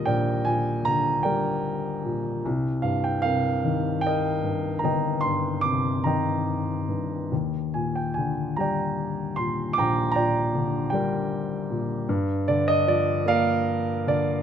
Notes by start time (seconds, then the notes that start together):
Already playing: A#2 D3 G3 G4 A#4 D5 D#5 F5
0.06 A#1 A#4 D5 G5
0.45 A#2 G#5
0.85 D3 A#5
1.23 G3 A#4 D5 G5
2.05 A#2
2.45 C2
2.82 G2 F5
3.04 G5
3.22 C3 A#4 F5
3.65 D#3
4.01 G5
4.06 A#4 D#5
4.44 G2
4.79 A#5
4.84 G1 D#5 G5
5.21 C6
5.25 G2
5.61 C3 D6
6.04 D#3 D#5 G5 A#5
6.88 G2
7.32 D#2
7.74 A#2 G#5
7.95 G5
8.14 D3 G#5
8.56 G3 G5 A#5
8.61 D5
9.36 A#2 C6
9.73 D6
9.78 A#1 G5 A#5
10.12 A#5
10.16 A#2 D5 G5
10.55 D3
10.90 G3 A#4 G5
10.94 D5
11.70 A#2
12.09 G2
12.48 D3 D5
12.68 D#5
12.87 F3 D5
13.25 A#3 A#4 D5 F5
14.07 D3 D5